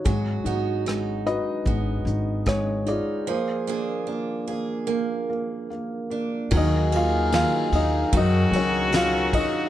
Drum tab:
RD |--------|--------|xxxxxxxx|
HH |xxxxxxxx|--------|--------|
SD |--r---r-|--------|--o---o-|
BD |o---o-o-|--------|o---o--o|